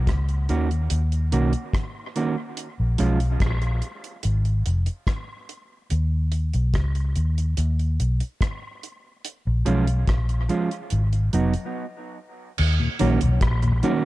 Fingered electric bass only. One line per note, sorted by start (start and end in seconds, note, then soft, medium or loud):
0.08 0.47 C#2 medium
0.50 0.89 D#2 medium
0.91 1.30 D#2 medium
1.33 1.53 B1 medium
2.80 2.98 A#1 medium
3.00 3.39 B1 medium
3.41 3.80 A#1 medium
4.25 4.64 G#1 loud
4.67 4.87 F1 medium
5.92 6.51 D#2 medium
6.54 6.74 B1 medium
6.74 7.14 C#2 medium
7.17 7.56 D#2 medium
7.58 7.97 D#2 loud
8.00 8.20 B1 medium
9.47 9.66 A#1 medium
9.67 10.06 B1 loud
10.08 10.48 A#1 medium
10.92 11.31 G#1 medium
11.34 11.54 F1 medium
12.59 12.79 D#2 medium
13.01 13.21 A#1 loud
13.22 13.41 B1 medium
13.42 13.81 A#1 loud